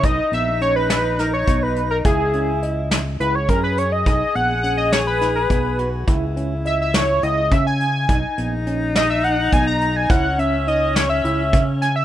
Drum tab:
HH |xxxxxxx|xxxxxxx|xxxxxxx|xxxxxxx|
SD |---oo--|---o---|---oo--|---o-o-|
BD |o----o-|o----o-|o----o-|o----o-|

HH |xxxxxxx|xxxxxxx|
SD |---o---|---o--o|
BD |o----o-|o----o-|